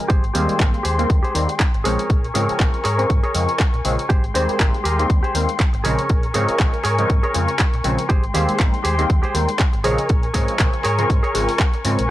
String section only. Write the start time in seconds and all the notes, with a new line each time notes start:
0.09 G#3 G5 C6
1.85 A#4 G#5 C#6
4.10 G#3 G5 C6
5.85 A#4 G#5 C#6
8.09 G#3 G5 C6
9.84 A#4 G#5 C#6